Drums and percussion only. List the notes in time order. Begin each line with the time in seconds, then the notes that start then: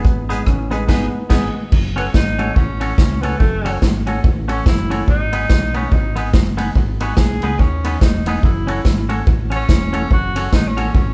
0.05 kick, hi-hat pedal
0.30 closed hi-hat
0.46 kick, cross-stick
0.71 closed hi-hat
0.89 kick, snare, crash
1.30 kick, snare, crash
1.72 kick, crash
1.98 ride
2.14 kick, snare
2.39 ride
2.56 kick
2.81 ride
2.98 kick, snare
3.23 ride
3.40 kick
3.66 ride
3.82 kick, snare
4.07 ride
4.24 kick
4.49 ride
4.66 kick, snare
4.91 ride
5.08 kick
5.33 ride
5.49 kick, snare
5.74 ride
5.92 kick
6.16 ride
6.33 kick, snare
6.58 ride
6.75 kick
7.00 ride
7.17 kick, snare
7.42 ride
7.59 kick
7.84 ride
8.01 kick, snare
8.26 ride
8.43 kick
8.68 ride
8.85 kick, snare
9.09 ride
9.27 kick
9.51 ride
9.69 kick, snare
9.94 ride
10.11 kick
10.36 ride
10.53 kick, snare
10.78 ride
10.95 kick